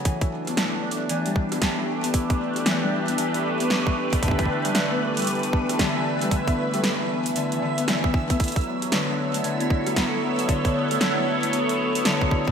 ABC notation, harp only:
X:1
M:4/4
L:1/16
Q:"Swing 16ths" 1/4=115
K:Edor
V:1 name="Harp"
E, E z B, E z3 E, G, z B, E, E z B, | E z3 E, G, z B, E, E z B, E z3 | D, E, z G, D, B, z G, B, z3 D, E, z G, | D, B, z G, B, z3 D, E, D, B, E, B, z B, |
B, z3 D, D z A, D, B, z A, B, z3 | D, D z A, D, B, z A, B, z3 D, D z A, |]